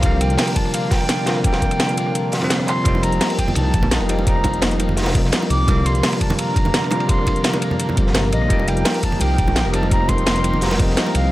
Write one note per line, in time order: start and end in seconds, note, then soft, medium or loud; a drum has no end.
0.00 0.37 C2 loud
0.00 1.24 C3 medium
0.00 1.24 D3 medium
0.00 1.25 F3 medium
0.00 2.83 D4 medium
0.00 2.83 F4 medium
0.00 2.81 A#4 medium
0.00 0.22 F5 medium
0.00 kick loud
0.00 closed hi-hat medium
0.00 ride medium
0.05 1.25 G3 medium
0.05 1.26 A#3 loud
0.12 cross-stick soft
0.21 0.58 G5 medium
0.21 closed hi-hat medium
0.21 ride medium
0.30 closed hi-hat soft
0.38 snare loud
0.38 closed hi-hat loud
0.38 open hi-hat medium
0.47 closed hi-hat soft
0.47 ride soft
0.56 0.75 A5 medium
0.56 kick medium
0.56 closed hi-hat medium
0.56 ride medium
0.65 cross-stick soft
0.74 0.93 F5 medium
0.74 closed hi-hat medium
0.74 ride medium
0.91 1.44 G5 loud
0.91 kick loud
0.91 snare loud
0.91 closed hi-hat medium
0.91 open hi-hat medium
1.01 ride soft
1.09 snare loud
1.09 closed hi-hat medium
1.09 ride medium
1.26 1.41 C3 medium
1.26 1.42 D3 medium
1.26 1.43 F3 medium
1.26 1.43 G3 medium
1.26 1.43 A#3 medium
1.26 snare loud
1.26 closed hi-hat medium
1.26 ride medium
1.43 2.30 C3 medium
1.43 2.30 D3 medium
1.43 2.31 F3 medium
1.43 2.31 G3 medium
1.43 2.46 G5 loud
1.43 kick loud
1.43 closed hi-hat loud
1.43 ride medium
1.47 2.32 A#3 medium
1.53 cross-stick soft
1.53 snare loud
1.53 ride medium
1.62 kick medium
1.62 closed hi-hat medium
1.71 closed hi-hat soft
1.71 ride medium
1.80 snare loud
1.80 closed hi-hat loud
1.80 ride medium
1.89 closed hi-hat soft
1.97 closed hi-hat medium
1.97 ride medium
2.07 cross-stick soft
2.15 closed hi-hat loud
2.15 ride medium
2.32 snare loud
2.32 closed hi-hat medium
2.32 open hi-hat medium
2.40 2.83 C3 medium
2.40 2.83 D3 medium
2.40 2.82 F3 medium
2.40 2.83 G3 medium
2.40 ride soft
2.44 2.85 C4 loud
2.50 snare loud
2.50 closed hi-hat loud
2.50 ride medium
2.60 cross-stick medium
2.68 3.05 C6 loud
2.68 clap medium
2.68 closed hi-hat medium
2.68 ride medium
2.83 3.20 F1 loud
2.83 4.06 F3 loud
2.83 4.07 G3 medium
2.83 4.07 A#3 medium
2.83 4.08 C4 medium
2.83 5.65 D#4 medium
2.83 5.65 G4 medium
2.83 5.65 A#4 medium
2.83 kick loud
2.83 closed hi-hat medium
2.83 ride medium
2.88 4.08 D#4 loud
2.95 cross-stick soft
2.95 high bongo medium
3.03 3.40 A#5 loud
3.03 closed hi-hat medium
3.03 ride medium
3.12 closed hi-hat soft
3.21 snare loud
3.21 closed hi-hat medium
3.21 open hi-hat medium
3.21 high bongo medium
3.30 closed hi-hat soft
3.30 ride soft
3.39 3.56 G5 loud
3.39 kick medium
3.39 closed hi-hat medium
3.39 ride medium
3.48 cross-stick soft
3.48 high conga medium
3.55 3.72 C2 loud
3.55 3.97 A5 loud
3.55 closed hi-hat loud
3.55 ride medium
3.55 high bongo soft
3.74 3.99 A#1 loud
3.74 kick loud
3.74 closed hi-hat medium
3.74 ride medium
3.83 high bongo medium
3.83 high conga medium
3.91 snare loud
3.91 closed hi-hat medium
3.91 ride loud
4.00 4.25 F1 loud
4.00 ride soft
4.08 4.23 F3 medium
4.08 4.25 G3 medium
4.08 4.25 A#3 medium
4.08 4.25 C4 medium
4.08 4.25 D#4 medium
4.08 closed hi-hat medium
4.08 ride medium
4.19 high bongo medium
4.25 4.61 F1 loud
4.25 5.12 F3 medium
4.25 5.12 G3 medium
4.25 5.13 A#3 medium
4.25 5.14 C4 medium
4.25 4.60 A#5 loud
4.25 kick loud
4.25 closed hi-hat medium
4.25 ride medium
4.29 5.14 D#4 loud
4.36 cross-stick soft
4.44 kick medium
4.44 closed hi-hat medium
4.44 ride medium
4.44 high bongo medium
4.54 closed hi-hat soft
4.62 5.31 F1 medium
4.62 snare loud
4.62 closed hi-hat loud
4.62 ride medium
4.71 closed hi-hat soft
4.80 closed hi-hat medium
4.80 ride medium
4.80 high bongo medium
4.89 high conga medium
4.97 snare medium
4.97 closed hi-hat loud
4.97 open hi-hat medium
5.02 snare medium
5.02 open hi-hat medium
5.06 snare loud
5.06 open hi-hat medium
5.06 high bongo medium
5.13 5.65 F3 medium
5.13 5.65 G3 medium
5.13 5.66 A#3 medium
5.13 5.67 C4 medium
5.13 kick loud
5.13 closed hi-hat medium
5.13 ride medium
5.17 5.67 D#4 medium
5.24 snare soft
5.32 snare loud
5.32 closed hi-hat medium
5.32 ride medium
5.43 high bongo medium
5.50 5.66 C2 medium
5.50 5.87 D6 loud
5.50 closed hi-hat medium
5.50 ride medium
5.66 6.02 C2 loud
5.66 6.88 C3 loud
5.66 6.89 D3 medium
5.66 6.90 F3 medium
5.66 6.90 G3 medium
5.66 8.47 D4 medium
5.66 8.47 F4 medium
5.66 8.48 A#4 medium
5.66 kick loud
5.66 closed hi-hat medium
5.66 ride medium
5.66 high bongo medium
5.71 6.91 A#3 loud
5.77 cross-stick soft
5.86 6.20 C6 loud
5.86 closed hi-hat medium
5.86 ride medium
5.95 closed hi-hat soft
6.03 snare loud
6.03 closed hi-hat medium
6.03 open hi-hat medium
6.03 high bongo medium
6.13 closed hi-hat soft
6.13 ride soft
6.21 6.37 A5 medium
6.21 kick medium
6.21 closed hi-hat medium
6.21 ride medium
6.30 cross-stick soft
6.30 high bongo medium
6.30 high conga medium
6.38 7.05 A#5 loud
6.38 closed hi-hat medium
6.38 ride medium
6.56 kick loud
6.56 closed hi-hat medium
6.56 ride medium
6.65 high bongo medium
6.65 high conga medium
6.74 snare loud
6.74 closed hi-hat medium
6.74 ride medium
6.84 ride soft
6.90 7.06 C3 medium
6.90 7.07 D3 medium
6.90 7.07 F3 medium
6.90 7.07 G3 medium
6.90 7.08 A#3 medium
6.90 closed hi-hat medium
6.90 ride medium
6.90 high bongo medium
7.00 ride soft
7.07 7.94 C3 medium
7.07 7.95 D3 medium
7.07 7.95 F3 medium
7.07 7.96 G3 medium
7.07 7.42 C6 medium
7.07 kick loud
7.07 closed hi-hat medium
7.07 ride medium
7.12 7.97 A#3 medium
7.18 cross-stick soft
7.27 kick medium
7.27 closed hi-hat medium
7.27 ride medium
7.27 high bongo medium
7.36 closed hi-hat soft
7.44 snare loud
7.44 closed hi-hat medium
7.44 ride medium
7.53 closed hi-hat soft
7.53 high bongo medium
7.62 closed hi-hat medium
7.62 ride medium
7.71 cross-stick soft
7.71 high conga medium
7.79 closed hi-hat medium
7.79 ride medium
7.89 high bongo medium
7.89 high conga medium
7.95 8.34 G1 loud
7.95 8.47 C3 medium
7.95 8.48 D3 medium
7.95 8.47 F3 medium
7.95 8.48 G3 medium
7.95 kick loud
7.95 closed hi-hat medium
7.95 ride medium
8.00 8.49 A#3 medium
8.07 snare soft
8.14 snare loud
8.14 closed hi-hat medium
8.14 ride medium
8.14 high bongo medium
8.32 8.49 A#1 medium
8.32 8.70 D#5 medium
8.32 closed hi-hat medium
8.32 ride medium
8.42 cross-stick soft
8.48 8.84 F1 loud
8.48 9.71 F3 loud
8.48 9.71 G3 medium
8.48 9.72 A#3 medium
8.48 9.72 C4 medium
8.48 11.30 D#4 medium
8.48 11.30 G4 medium
8.48 11.32 A#4 medium
8.48 kick loud
8.48 closed hi-hat medium
8.48 ride medium
8.53 9.73 D#4 loud
8.59 cross-stick soft
8.59 high bongo medium
8.68 9.03 G5 medium
8.68 closed hi-hat medium
8.68 ride medium
8.77 closed hi-hat soft
8.85 snare loud
8.85 closed hi-hat medium
8.85 open hi-hat medium
8.85 high bongo medium
8.94 closed hi-hat soft
8.94 ride soft
9.03 9.22 A5 medium
9.03 kick medium
9.03 closed hi-hat medium
9.03 ride medium
9.12 cross-stick soft
9.12 high conga medium
9.20 9.37 C2 loud
9.20 9.73 G5 loud
9.20 closed hi-hat medium
9.20 ride medium
9.20 high bongo medium
9.38 9.64 A#1 medium
9.38 kick loud
9.38 closed hi-hat medium
9.38 ride medium
9.47 high bongo medium
9.47 high conga medium
9.56 snare loud
9.56 closed hi-hat medium
9.56 ride medium
9.65 9.90 F1 loud
9.65 ride soft
9.73 9.88 F3 medium
9.73 9.89 G3 medium
9.73 9.90 A#3 medium
9.73 9.90 C4 medium
9.73 9.90 D#4 medium
9.73 9.90 A5 loud
9.73 closed hi-hat medium
9.73 ride medium
9.83 high bongo medium
9.89 10.25 F1 loud
9.89 10.76 F3 medium
9.89 10.77 G3 medium
9.89 10.78 A#3 medium
9.89 10.78 C4 medium
9.89 10.10 A#5 loud
9.89 kick loud
9.89 closed hi-hat medium
9.89 ride medium
9.94 10.79 D#4 medium
10.01 cross-stick soft
10.09 10.80 C6 loud
10.09 kick medium
10.09 closed hi-hat medium
10.09 ride medium
10.09 high bongo medium
10.18 closed hi-hat soft
10.26 10.96 F1 medium
10.26 snare loud
10.26 closed hi-hat medium
10.26 ride medium
10.36 closed hi-hat soft
10.44 closed hi-hat medium
10.44 ride medium
10.44 high bongo soft
10.54 high conga medium
10.61 snare medium
10.61 closed hi-hat loud
10.61 open hi-hat medium
10.66 snare medium
10.66 open hi-hat medium
10.71 snare loud
10.71 open hi-hat medium
10.71 high bongo medium
10.77 11.30 F3 medium
10.77 11.30 G3 medium
10.77 11.31 A#3 medium
10.77 11.31 C4 medium
10.77 kick loud
10.77 closed hi-hat medium
10.77 ride medium
10.82 11.32 D#4 medium
10.90 snare soft
10.97 snare loud
10.97 closed hi-hat medium
10.97 ride medium
11.07 high bongo medium
11.15 11.31 C2 medium
11.15 11.32 F5 loud
11.15 closed hi-hat medium
11.15 ride medium